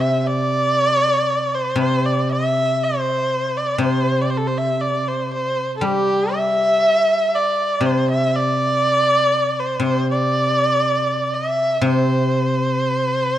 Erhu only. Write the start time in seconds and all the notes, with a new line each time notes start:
0.00 E5
0.26 D5
1.54 C5
1.80 C5
2.06 D5
2.32 E5
2.83 C5
3.57 D5
3.83 C5
4.21 D5
4.30 C5
4.37 A4
4.47 C5
4.58 E5
4.81 D5
5.08 C5
5.33 C5
5.77 A4
5.85 G4
6.36 E5
7.35 D5
7.86 C5
8.11 E5
8.36 D5
9.59 C5
9.85 C5
10.11 D5
11.34 E5
11.86 C5